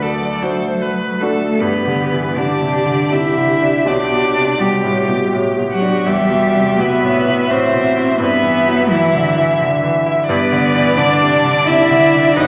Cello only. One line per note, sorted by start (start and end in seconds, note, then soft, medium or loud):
0.01 1.19 F#3 soft
1.20 1.60 A3 soft
1.59 2.38 B3 medium
2.37 3.13 D4 medium
3.11 3.86 E4 medium
3.87 4.61 D4 medium
4.59 5.33 G3 medium
5.70 6.08 F#3 medium
6.07 6.80 G3 medium
6.78 7.52 B3 medium
7.50 8.20 C4 medium
8.21 8.93 B3 medium
8.91 9.60 E3 medium
10.30 10.98 B3 medium
10.97 11.68 D4 medium
11.67 12.34 E4 medium
12.34 12.47 D#4 loud